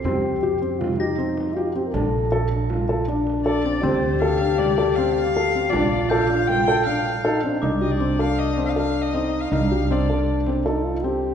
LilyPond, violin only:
\new Staff \with { instrumentName = "Violin" } { \time 5/4 \key f \mixolydian \tempo 4 = 158 r1 r4 | r1 d''4 | c''4 f''4 d''4 f''8 f''4. | d''4 f''4 g''4 f''4. r8 |
r8 ees''16 d''8. f''8 \tuplet 3/2 { ees''4 f''8 f''4 ees''8~ ees''4 f''8 } | f''4 d''4 r2. | }